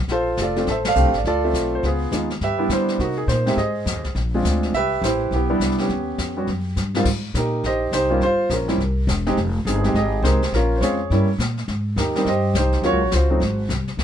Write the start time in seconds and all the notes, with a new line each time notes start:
0.08 A#1 F4, brush sweep, snare
0.12 A4 C5
0.37 F1, snare, hi-hat pedal
0.42 F4 A4 D5
0.56 A3 C4 D4 F4, snare
0.67 A1 A4 C5, brush sweep, snare
0.71 E5
0.85 A4 D5 F5, snare, ride
0.96 C2 A3 C4 D4 G4, hi-hat pedal
1.06 A#1
1.14 A1, snare
1.18 D5
1.25 D2 F4 A4 D5, brush sweep, snare
1.44 A3 C4 F4 E5
1.53 B1, snare, hi-hat pedal
1.75 C5
1.83 C#2 B3 F4 G#4, brush sweep, snare
2.12 D#2 G#3 B3 D#4 F4, snare, hi-hat pedal
2.30 snare
2.41 G2 G4 B4 E5, brush sweep, snare
2.58 G3 B3 D4 E4
2.69 D3 E4 G4 C5, snare, hi-hat pedal
2.88 snare
2.99 C3 A#3 D#4 F#4, brush sweep, snare
3.17 G#4
3.28 A#2 C5, snare, hi-hat pedal
3.46 G#3 C4 D#4 G4 E5, snare
3.57 G#2 G#4 C5 D#5, brush sweep, snare
3.86 F2, snare, hi-hat pedal
3.95 D#2
4.04 C2, snare
4.15 A#1, brush sweep, snare
4.34 G#3 C4 D4 F4
4.44 D2, snare, hi-hat pedal
4.63 snare
4.73 C2 G4 B4 E5, brush sweep, snare
5.02 A1 G4 C5, snare, hi-hat pedal
5.06 E4
5.31 B1 G4, brush sweep, snare
5.35 B3 E4
5.50 G3 B3 D4 E4
5.60 C2, snare, hi-hat pedal
5.71 snare
5.78 G4, snare
5.80 B3 C#4, snare
5.89 D#2, brush sweep, snare
6.18 F2, snare, hi-hat pedal
6.37 G3 B3 C#4 F#4
6.47 F#2, brush sweep, snare
6.76 G2, snare, hi-hat pedal
6.95 G#2 G3 A#3 C4 F4, snare
7.05 G#2, brush sweep, kick, snare, crash
7.34 A#2 D#4 G4 A#4, snare, hi-hat pedal
7.64 A#1 G4 C5 D#5, brush sweep, snare
7.92 C2 D#4 G4 C5, snare, hi-hat pedal
8.10 G3 A#3 C#4 F4
8.21 G1 F4 C5, brush sweep, snare
8.50 A#1 C#4 F4 A#4, snare, hi-hat pedal
8.68 G3 A#3 C4 E4, snare
8.78 C2, brush sweep, snare
9.07 E1, snare, hi-hat pedal
9.26 G#3 C4 D#4 G4, snare
9.37 F1, brush sweep, snare
9.65 G1 C4 D#4 G#4, snare, hi-hat pedal
9.84 G#3 C4 D#4 G4, snare
9.94 G#1 G4 G#4 D#5, brush sweep, snare
10.22 C2 G#3 C4 D#4 G#4 A#4 C5, snare, hi-hat pedal
10.42 snare
10.52 A#1 C#4 F4 A#4, brush sweep, snare
10.76 C5
10.81 F2 G#3 C4 C#4 F4 G#4 C#5, snare, hi-hat pedal
11.10 G2 G3 A#3 C#4 E4, brush sweep, snare
11.38 A#2, snare, hi-hat pedal
11.57 snare
11.68 G#2, brush sweep, snare
11.96 D#2 D#4 G4 A#4, snare, hi-hat pedal
12.15 G3 A#3 C4 D#4, snare
12.25 G2 G4 C5 D#5, brush sweep, snare
12.54 C2 C5, snare, hi-hat pedal
12.58 D#4 G4
12.72 snare
12.82 D#2 F#3 A#3 C#4 F4, brush sweep, snare
12.86 F#4 C#5
12.93 C#2
13.02 A#1
13.12 C#2 F4 F#4 C5, snare, hi-hat pedal
13.30 F#3 A3 C4 D#4
13.40 G#1, brush sweep, snare
13.69 C2, snare, hi-hat pedal
13.88 snare
13.97 C#2, brush sweep, snare